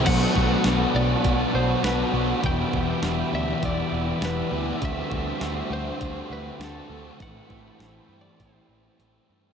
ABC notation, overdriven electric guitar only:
X:1
M:4/4
L:1/8
Q:1/4=101
K:Bphr
V:1 name="Overdriven electric guitar"
[B,,F,B,DF] [B,DF] [F,B,DF] [B,DF] [B,,F,B,DF] [B,DF] [F,B,DF] [B,DF] | [E,,B,,E,G,B,E] [E,G,B,E] [E,G,B,E] [E,G,B,E] [E,,B,,E,G,B,E] [E,G,B,E] [E,G,B,E] [E,G,B,E] | [D,A,CF] [A,CF] [D,A,CF] [A,CF] [D,A,CF] [A,CF] [D,A,CF] [A,CF] | [A,,E,A,CE] [A,CE] [E,A,CE] [A,CE] [A,,E,A,CE] [A,CE] [E,A,CE] [A,CE] |]